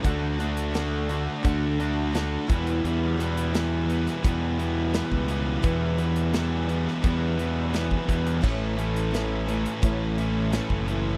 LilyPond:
<<
  \new Staff \with { instrumentName = "Overdriven electric guitar" } { \time 4/4 \key e \dorian \tempo 4 = 86 <d a d' fis'>8 <d a d' fis'>8 <d a d' fis'>8 <d a d' fis'>8 <d a d' fis'>8 <d a d' fis'>8 <d a d' fis'>8 <e g b e'>8 | <e g b e'>8 <e g b e'>8 <e g b e'>8 <e g b e'>8 <e g b e'>8 <e g b e'>8 <e g b e'>8 <e g b e'>8 | <e g b e'>8 <e g b e'>8 <e g b e'>8 <e g b e'>8 <e g b e'>8 <e g b e'>8 <e g b e'>8 <e g b e'>8 | <a, e a cis' e'>8 <a, e a cis' e'>8 <a, e a cis' e'>8 <a, e a cis' e'>8 <a, e a cis' e'>8 <a, e a cis' e'>8 <a, e a cis' e'>8 <a, e a cis' e'>8 | }
  \new Staff \with { instrumentName = "Twelve-string acoustic guitar" } { \time 4/4 \key e \dorian <d a d' fis'>8 <a d' fis'>8 <d a d' fis'>4 <d a d' fis'>4 <d a d' fis'>8 <e, b, e g b e'>8~ | <e, b, e g b e'>8 <e g b e'>8 <e g b e'>4 <e, b, e g b e'>4 <e g b e'>8 <e g b e'>8 | <e, b, e g b e'>8 <e g b e'>8 <e g b e'>4 <e, b, e g b e'>4 <e g b e'>4 | <a, e a cis' e'>8 <a cis' e'>8 <e a cis' e'>8 <a cis' e'>8 <a, e a cis' e'>4 <e a cis' e'>4 | }
  \new Staff \with { instrumentName = "Overdriven electric guitar" } { \clef bass \time 4/4 \key e \dorian <d a d'>8 <d a d'>8 <d a d'>8 <d a d'>8 <d a d'>8 <d a d'>8 <d a d'>8 <e, b, e>8 | <e, b, e>8 <e, b, e>8 <e, b, e>8 <e, b, e>8 <e, b, e>8 <e, b, e>8 <e, b, e>8 <e, b, e>8 | <e, b, e>8 <e, b, e>8 <e, b, e>8 <e, b, e>8 <e, b, e>8 <e, b, e>8 <e, b, e>8 <e, b, e>8 | <a, e a>8 <a, e a>8 <a, e a>8 <a, e a>8 <a, e a>8 <a, e a>8 <a, e a>8 <a, e a>8 | }
  \new Staff \with { instrumentName = "Fingered electric bass" } { \clef bass \time 4/4 \key e \dorian d,2 d,4. e,8 | e,2 e,4~ e,16 cis,8. | e,2 e,4. e,8 | a,,2 a,,4~ a,,16 fis,,8. | }
  \new DrumStaff \with { instrumentName = "Drums" } \drummode { \time 4/4 <hh bd>8 hh16 hh16 <hh sn>8 hh8 <hh bd>8 hh8 <hh sn>8 <hh bd>16 hh16 | hh8 hh16 hh16 <hh sn>8 hh16 <hh sn>16 <hh bd>8 hh8 <hh sn>16 bd16 hh8 | <hh bd>8 hh16 hh16 <hh sn>8 hh16 sn16 <hh bd>8 hh8 <hh sn>16 bd16 <hh bd>16 hh16 | <cymc bd>8 hh16 hh16 <hh sn>8 hh16 hh16 <hh bd>8 hh8 <hh sn>16 bd16 hh8 | }
>>